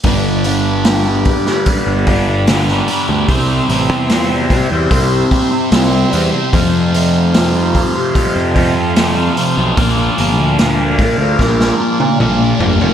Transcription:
0.04 G1 G2 D3 G3 B3 D4 B4 D5, kick, open hi-hat
0.44 G2 D3 G3, open hi-hat
0.85 G2 D3 G3, snare, open hi-hat
1.06 D3 G3
1.25 kick, open hi-hat
1.46 D3 G3, snare
1.66 G2 D3 G3, kick, open hi-hat
1.87 G1
2.07 G2 D3 G3, kick, open hi-hat
2.29 muted distorted electric guitar stroke
2.47 G2 D3 G3, snare, open hi-hat
2.68 D3 G3, snare
2.88 G2 D3 G3, open hi-hat
3.08 D2 D3 G3
3.28 C2 C3 G3 C4 E4 C5 E5, kick, open hi-hat
3.69 A1 C3 G3 C4, open hi-hat
3.89 E2
4.09 C3 G3 C4, snare, open hi-hat
4.30 G3 C4
4.50 C3, kick, open hi-hat
4.70 E2 G3 C4
4.90 C2 C3 G3 C4, kick, open hi-hat
5.31 C3 G3 C4, kick, open hi-hat
5.52 muted distorted electric guitar stroke
5.71 C2 C3 G3 C4, snare, open hi-hat
5.91 G3 C4
6.11 E2 C3 G3 C4, open hi-hat
6.31 G3 C4
6.53 F2 C3 F3 A3 C4 F4 F5, kick, open hi-hat
6.93 F2 C3 F3, open hi-hat
7.33 F2 C3 F3, snare, open hi-hat
7.53 C3 F3
7.75 kick, open hi-hat
7.94 C3 F3
8.13 F2 C3 F3, kick, open hi-hat
8.36 F2
8.54 F2 C3 F3, kick, open hi-hat
8.75 muted distorted electric guitar stroke
8.94 F2 C3 F3, snare, open hi-hat
9.16 C3 F3
9.36 F2 C3 F3, open hi-hat
9.57 B1 C3 F3
9.77 A#1 A#2 F3 A#3 D4 D5, kick, open hi-hat
10.18 G1 A#2 F3 A#3, open hi-hat
10.38 D2
10.59 A#2 F3 A#3, snare, open hi-hat
10.78 F3 A#3
10.99 A#2, kick, open hi-hat
11.18 D2 F3 A#3
11.38 A#1 A#2 F3 A#3, kick, snare
11.60 snare
11.79 A#2 F3 A#3
12.00 muted distorted electric guitar stroke, high tom
12.19 A#1 A#2 F3 A#3, mid tom
12.40 F3 A#3
12.59 G1 A#2 F3 A#3, floor tom
12.80 F1 F3 A#3, floor tom

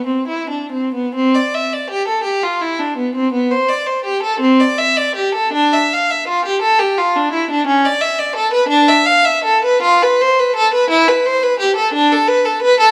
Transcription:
0.06 C4
0.28 E4
0.50 D4
0.72 C4
0.94 B3
1.15 C4
1.34 D5
1.54 E5
1.73 D5
1.90 G4
2.08 A4
2.24 G4
2.43 F4
2.61 E4
2.79 D4
2.97 B3
3.15 C4
3.32 B3
3.51 C5
3.69 D5
3.86 C5
4.05 G4
4.23 A4
4.40 C4
4.60 D5
4.78 E5
4.97 D5
5.15 G4
5.35 A4
5.53 D4
5.73 E5
5.93 F5
6.10 E5
6.28 F4
6.45 G4
6.62 A4
6.79 G4
6.98 F4
7.16 D4
7.33 E4
7.51 D4
7.67 C#4
7.85 D5
8.01 E5
8.18 D5
8.36 A4
8.53 B4
8.68 D4
8.88 E5
9.05 F5
9.25 E5
9.44 A4
9.65 B4
9.82 F4
10.02 B4
10.21 C5
10.39 B4
10.56 A4
10.74 B4
10.90 E4
11.08 B4
11.26 C5
11.43 B4
11.60 G4
11.76 A4
11.93 D4
12.12 A4
12.28 B4
12.45 A4
12.62 B4
12.80 A4

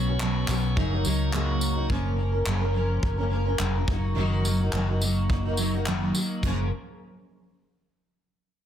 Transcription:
Already playing: B1 C#4 B4 C#5
0.07 B3 C#4 F#4
0.20 B2 F#3 B3 C#4 F#4, clap
0.48 B1 F#3 B3 C#4 F#4, clap, tambourine
0.76 F#1 F#2 C#3 F#3 A#3 D#4 F#4 A#4, kick
0.91 F#3 A#3 D#4 F#4
1.04 C#2 F#3 A#3 D#4 F#4, tambourine
1.32 F#2 C#3 F#3 A#3 D#4 F#4, clap
1.61 tambourine
1.75 F#3 A#3 D#4 F#4
1.89 F#1 F#2 C#3 F3 A#3 C#4 A#4, kick
2.17 F3 A#3 C#4 A#4
2.32 F3 A#3 C#4 A#4
2.45 F#1 F#2 C#3 F3 A#3 C#4 A#4, clap
2.60 F3 A#3 C#4 A#4
2.74 F3 A#3 C#4 A#4
3.03 F#1, kick
3.18 F3 A#3 C#4 A#4
3.30 F3 A#3 C#4 A#4
3.45 F3 A#3 C#4 A#4
3.58 F1 F#2 C#3 F3 A#3 C#4 A#4, clap
3.74 F3 A#3 C#4 A#4
3.87 F#1 F#3 A#3 D#4 F#4, kick
4.15 F#1 F#2 D#3 F#3 A#3 D#4 F#4
4.44 F#3 A#3 D#4 F#4, tambourine
4.60 F#3 A#3 D#4 F#4
4.73 F#1 F#2 D#3 F#3 A#3 D#4 F#4, clap
4.88 F#3 A#3 D#4 F#4
5.01 F#3 A#3 D#4 F#4, tambourine
5.30 kick
5.45 F#3 A#3 D#4 F#4
5.57 F#3 A#3 D#4 F#4, tambourine
5.74 F#3 A#3 D#4 F#4
5.86 F#2 D#3 F#3 A#3 D#4 F#4, clap
6.14 F#3 A#3 D#4 F#4, tambourine
6.43 F#1 F#2 C#3 F3 A#3 C#4 A#4, kick, crash

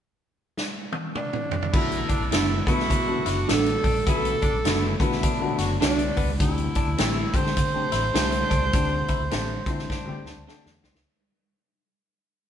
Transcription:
0.57 snare
0.92 high tom
1.15 D4, mid tom
1.33 mid tom
1.51 floor tom
1.62 floor tom
1.73 B1 D3 E3 A3 B3 E4 F#4, kick, crash
1.92 closed hi-hat
2.09 D3 D4, kick, closed hi-hat
2.21 B1
2.31 F#1 D3 E3 A3 B3 D4 E4 F#4 A4, snare, closed hi-hat
2.66 B2 D3 E3 A3 B3 E4 F#4, kick, closed hi-hat
2.80 snare
2.90 B2, kick, closed hi-hat
3.07 D3 A3 B3 F#4
3.26 F#1 D3 D4 E4, snare, closed hi-hat
3.47 A1 D3 A3 B3 D4 F#4 A4, snare, closed hi-hat
3.66 closed hi-hat
3.84 A#1 D4, kick, open hi-hat
4.06 B1 D3 E3 A3 B3 E4 F#4 A4, kick, closed hi-hat
4.25 closed hi-hat
4.42 D3 D4, kick, closed hi-hat
4.53 B1
4.64 F#1 D3 E3 A3 B3 D4 E4 F#4 A4, snare, closed hi-hat
5.00 B2 D3 E3 A3 B3 E4 F#4, kick, closed hi-hat
5.12 snare
5.23 B2 D4, kick, closed hi-hat
5.40 D3 A3 B3 F#4
5.58 F#1 F#3 F#4, snare, closed hi-hat
5.80 C2 D3 A3 B3 D4 F#4 A4, snare, closed hi-hat
5.99 closed hi-hat
6.17 C#2 B3, kick, open hi-hat
6.39 D2 D3 A3 C4 E4 F#4, kick, closed hi-hat
6.48 G4
6.58 closed hi-hat
6.75 D4, kick, closed hi-hat
6.86 D2
6.97 A1 D3 A3 C4 G4 A4, snare, closed hi-hat
7.33 D3 A3 C4 G4 C5, kick, closed hi-hat
7.46 snare
7.57 D3, kick, closed hi-hat
7.73 D3 A3 C4 G4
7.92 A1 E4, snare, closed hi-hat
8.13 C2 D3 A3 C4 G4 A4, snare, closed hi-hat
8.32 closed hi-hat
8.50 C#2 D4, kick, closed hi-hat
8.73 D2 D3 A3 C4 D4 G4, kick, closed hi-hat
9.08 E4, kick, closed hi-hat
9.20 D2
9.31 A1 D3 A3 C4 G4 A4, snare, closed hi-hat
9.66 D3 A3 C4 E4, kick, closed hi-hat
9.79 snare
9.90 D4, kick, snare
10.06 D3 A3 C4 G4
10.25 D2 A5, snare
10.36 D2
10.47 D3 A3 C4 D4 G4 A4 G5, snare
10.66 E2, snare
10.83 C2 C4 D5, snare
10.94 C#2, snare

